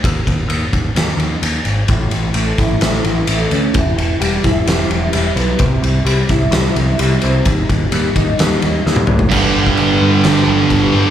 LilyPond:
<<
  \new Staff \with { instrumentName = "Clean electric guitar" } { \clef bass \time 4/4 \key g \major \tempo 4 = 129 r1 | a,4 a8 e'8 a8 e8 a8 cis'8 | e4 g8 e'8 g8 e8 g8 b8 | c4 g8 e'8 g8 c8 g8 c'8 |
ees4 g8 ees'8 g8 ees8 g8 bes8 | g,8 d'8 b8 d8 g8 b8 g8 d8 | }
  \new Staff \with { instrumentName = "Distorted electric guitar" } { \clef bass \time 4/4 \key g \major r1 | r1 | r1 | r1 |
r1 | <g, d g>2.~ <g, d g>8 <g, d g>8 | }
  \new Staff \with { instrumentName = "Distorted electric guitar" } { \clef bass \time 4/4 \key g \major r1 | r1 | r1 | r1 |
r1 | <g, d g>1 | }
  \new Staff \with { instrumentName = "Picked electric bass" } { \clef bass \time 4/4 \key g \major ees,8 ees,8 ees,8 ees,8 ees,8 ees,8 ees,8 aes,,8 | a,,8 a,,8 a,,8 a,,8 a,,8 a,,8 a,,8 d,8 | e,,8 e,,8 e,,8 e,,8 e,,8 e,,8 e,,8 b,,8 | c,8 c,8 c,8 c,8 c,8 c,8 c,8 c,8 |
ees,8 ees,8 ees,8 ees,8 ees,8 ees,8 ees,8 a,8 | g,,8 g,,8 g,,8 g,8 g,,8 g,,8 g,,8 g,,8 | }
  \new DrumStaff \with { instrumentName = "Drums" } \drummode { \time 4/4 <bd cymr>8 <bd cymr>8 cymr8 <bd cymr>8 <cymr sn>8 cymr8 cymr8 cymr8 | <bd cymr>8 cymr8 cymr8 <bd cymr sn>8 <cymr sn>8 cymr8 cymr8 cymr8 | <bd cymr>8 cymr8 cymr8 <bd cymr sn>8 <cymr sn>8 cymr8 cymr8 cymr8 | <bd cymr>8 cymr8 cymr8 <bd cymr sn>8 <cymr sn>8 cymr8 cymr8 cymr8 |
<bd cymr>8 <bd cymr>8 cymr8 <bd cymr>8 <cymr sn>8 cymr8 sn16 tommh16 toml16 tomfh16 | <cymc bd>8. bd16 cymc4 <cymc sn>4 <cymc bd>4 | }
>>